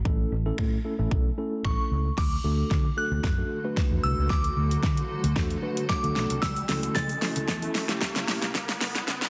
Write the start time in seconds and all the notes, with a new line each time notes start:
0.05 A1 A3 C#4 E4 A4, kick
0.32 A1
0.46 A3 C#4 E4 A4
0.58 A2, finger snap, kick
0.84 A3 C#4 E4 A4
0.99 A1 A3 C#4 E4 A4
1.11 kick
1.38 A3 C#4 E4 A4
1.65 A1 C#6, finger snap, kick
1.91 C#2
2.18 D2 D3 F#3 A3 F#4 A4 D6, kick, snare, crash, riser
2.44 D2 A3 D4 F#4 A4
2.71 D3, kick, snare
2.97 A3 D4 F#4 A4 F#6
3.11 D2
3.24 F#2, kick, snare
3.38 A3 D4 F#4 A4
3.64 A3 D4 F#4 B4
3.77 kick, snare
3.91 E2
4.03 C2 E6
4.18 C#2
4.30 D2 D6, kick, snare
4.44 closed hi-hat
4.57 D2
4.71 closed hi-hat
4.83 D3, kick, snare
4.97 closed hi-hat
5.24 D2, closed hi-hat
5.36 A3 D4 F#4 A4, kick, snare
5.50 closed hi-hat
5.62 A3 D4 F#4 B4
5.77 closed hi-hat
5.89 A3 D4 F#4 A4 D6, kick, snare
6.03 D2 A3 D4 F#4 A4, closed hi-hat
6.16 B1, snare
6.30 C2, closed hi-hat
6.42 C#2 C#3 E3 A3 E4 E6, kick, snare, shaker
6.56 closed hi-hat, shaker
6.69 C#2 A3 C#4 E4 A4, snare, open hi-hat, shaker
6.83 closed hi-hat, shaker
6.95 C#3 A6, kick, snare, shaker
7.09 closed hi-hat, shaker
7.22 A3 C#4 E4 A4, snare, open hi-hat, shaker
7.36 C#2, closed hi-hat, shaker
7.48 E2, kick, snare, shaker
7.62 A3 C#4 E4 A4, closed hi-hat, shaker
7.75 snare, open hi-hat, shaker
7.89 A3 C#4 E4 G4, snare, closed hi-hat, shaker
8.01 kick, snare, shaker
8.16 C#2, snare, closed hi-hat, shaker
8.28 B1, snare, open hi-hat
8.42 C2, snare, closed hi-hat, shaker
8.55 C#2, kick, snare, shaker
8.69 snare, closed hi-hat, shaker
8.81 C#2, snare, open hi-hat, shaker
8.95 snare, closed hi-hat, shaker
9.08 C#3, snare, shaker
9.22 snare, closed hi-hat, shaker